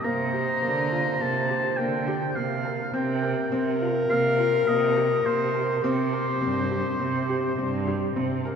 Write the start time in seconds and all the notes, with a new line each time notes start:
0.04 C3 A#3 C5 A#5
0.33 G4
0.62 D3 A#3
0.91 F4
1.20 C3 A#3 A5
1.50 G4
1.77 D3 A#3 G5
2.07 G4
2.35 C3 A#3 F5
2.65 A#4
2.93 C3 C4 A#4 G5
3.23 A#4
3.52 C3 C4
3.81 F4
4.10 C3 A#3 F5
4.38 F4
4.67 C3 A#3 D#5
4.96 G4
5.25 C3 A#3 C5
5.54 A#4
5.82 C3 C4 G4 C5
6.12 A#4
6.41 G2 C4
6.70 G4
7.00 C3 C4
7.29 G4
7.58 G2 C4
7.87 G4
8.16 C3 C4
8.45 A#4